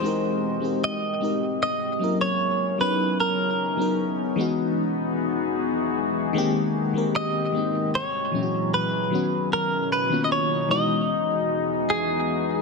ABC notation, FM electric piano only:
X:1
M:4/4
L:1/16
Q:1/4=76
K:Abmix
V:1 name="FM electric piano"
[A,CE=GB]2 z [A,CEGB]2 z [A,CEGB]2 z2 [_G,B,D_FB]4 [G,_CDEd]2- | [G,_CDEd]2 z [G,CDEB]2 z [=E,^G,=B,^D^F]6 z4 | [E,A,B,C=G]2 z [E,A,B,CB]2 z [E,A,B,CE]2 z2 [B,,_F,_G,D_F_G]4 [E,G,_CDG]2- | [E,G,_CDG]2 z [E,B,CDF]2 z [=E,^G,=B,^D^F]6 z4 |]